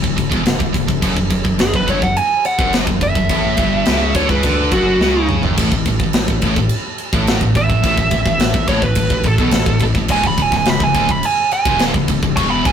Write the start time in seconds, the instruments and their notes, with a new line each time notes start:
0.03 analog synth bass C#1, distorted electric guitar C#2, kick
0.16 analog synth bass C#1, distorted electric guitar C#2, kick, crash
0.30 analog synth bass E1, distorted electric guitar E2, kick
0.43 analog synth bass C#1, distorted electric guitar C#2, snare, crash
0.59 analog synth bass C#1, distorted electric guitar C#2, kick
0.73 analog synth bass C#1, distorted electric guitar C#2, kick, crash
0.88 analog synth bass C#1, distorted electric guitar C#2, kick
1.02 analog synth bass F#1, distorted electric guitar F#2, kick, crash
1.16 analog synth bass F#1, distorted electric guitar F#2, kick
1.30 analog synth bass F#1, distorted electric guitar F#2, kick, crash
1.44 analog synth bass F#1, distorted electric guitar F#2, kick
1.58 analog synth bass F#1, distorted electric guitar F#2, lead electric guitar G#4, snare, crash
1.74 analog synth bass F#1, distorted electric guitar F#2, lead electric guitar B4, kick
1.88 analog synth bass G1, distorted electric guitar G2, lead electric guitar C#5, kick, crash
2.02 analog synth bass F#1, distorted electric guitar F#2, lead electric guitar F#5, kick
2.16 lead electric guitar G#5, crash
2.45 lead electric guitar F#5, crash
2.58 analog synth bass F#1, distorted electric guitar F#2, kick
2.73 snare, crash
2.87 analog synth bass F#1, distorted electric guitar F#2, kick
3.01 analog synth bass F#1, distorted electric guitar F#2, lead electric guitar E5, kick, crash
3.15 analog synth bass F#1, distorted electric guitar F#2, kick
3.29 analog synth bass A1, distorted electric guitar A2, kick, crash
3.57 analog synth bass G1, distorted electric guitar G2, kick, crash
3.85 analog synth bass C#2, distorted electric guitar C#3, snare, crash
4.14 analog synth bass D2, distorted electric guitar D3, lead electric guitar C#5, kick, crash
4.29 analog synth bass C#2, distorted electric guitar C#3, lead electric guitar B4, kick
4.43 analog synth bass D2, distorted electric guitar D3, kick, crash
4.71 analog synth bass F#1, distorted electric guitar F#2, lead electric guitar F#4, kick, crash
4.99 analog synth bass C#2, distorted electric guitar C#3, snare
5.29 mid tom
5.41 analog synth bass F#1, distorted electric guitar F#2, floor tom
5.58 analog synth bass A1, distorted electric guitar A2, kick, splash, crash
5.71 analog synth bass A1, distorted electric guitar A2, kick
5.85 analog synth bass A1, distorted electric guitar A2, kick, crash
5.99 analog synth bass A1, distorted electric guitar A2, kick
6.03 distorted electric guitar A2
6.13 analog synth bass A1, distorted electric guitar A2, snare, crash
6.28 analog synth bass A1, distorted electric guitar A2, kick
6.42 analog synth bass A1, distorted electric guitar A2, kick, crash
6.56 analog synth bass A1, distorted electric guitar A2, kick
6.69 crash
6.98 crash
7.13 analog synth bass A1, distorted electric guitar A2, kick
7.27 snare, crash
7.41 analog synth bass A1, distorted electric guitar A2, kick
7.55 analog synth bass A1, distorted electric guitar A2, lead electric guitar E5, kick, crash
7.69 analog synth bass A1, distorted electric guitar A2, kick
7.83 analog synth bass A1, distorted electric guitar A2, kick, crash
7.97 analog synth bass A1, distorted electric guitar A2, kick
8.11 analog synth bass A1, distorted electric guitar A2, kick, crash
8.26 analog synth bass A1, distorted electric guitar A2, kick
8.38 analog synth bass A1, distorted electric guitar A2, snare, crash
8.54 analog synth bass A1, distorted electric guitar A2, kick
8.67 analog synth bass A1, distorted electric guitar A2, lead electric guitar C#5, kick, crash
8.82 analog synth bass A1, distorted electric guitar A2, lead electric guitar B4, kick
8.95 analog synth bass A1, distorted electric guitar A2, kick, crash
9.10 analog synth bass A1, distorted electric guitar A2, kick
9.23 analog synth bass A1, distorted electric guitar A2, kick, crash
9.27 lead electric guitar A4
9.38 analog synth bass B1, distorted electric guitar B2, kick
9.51 analog synth bass A1, distorted electric guitar A2, snare, crash
9.66 analog synth bass A1, distorted electric guitar A2, kick
9.79 analog synth bass A1, distorted electric guitar A2, kick, crash
9.94 analog synth bass A1, distorted electric guitar A2, kick
10.08 analog synth bass C#1, lead electric guitar G#5, kick, crash
10.13 distorted electric guitar C#2
10.23 analog synth bass C#1, distorted electric guitar C#2, kick
10.27 lead electric guitar B5
10.38 analog synth bass C#1, distorted electric guitar C#2, kick, crash
10.42 lead electric guitar G#5
10.52 analog synth bass C#1, distorted electric guitar C#2, kick, snare
10.57 lead electric guitar G#5
10.65 analog synth bass C#1, distorted electric guitar C#2, lead electric guitar B5, snare, crash
10.80 analog synth bass C#1, distorted electric guitar C#2, lead electric guitar G#5, kick
10.95 analog synth bass D1, distorted electric guitar D2, lead electric guitar G#5, kick, crash
11.09 analog synth bass C#1, distorted electric guitar C#2, lead electric guitar B5, kick
11.23 lead electric guitar G#5, crash
11.51 lead electric guitar G#5, crash
11.65 analog synth bass C#1, distorted electric guitar C#2, kick
11.79 snare, crash
11.94 analog synth bass C#1, distorted electric guitar C#2, kick
12.08 analog synth bass C#1, distorted electric guitar C#2, kick, crash
12.23 analog synth bass C#1, distorted electric guitar C#2, kick
12.36 analog synth bass E1, distorted electric guitar E2, lead electric guitar C#6, kick, crash
12.51 lead electric guitar B5
12.65 analog synth bass D1, distorted electric guitar D2, lead electric guitar G#5, kick, crash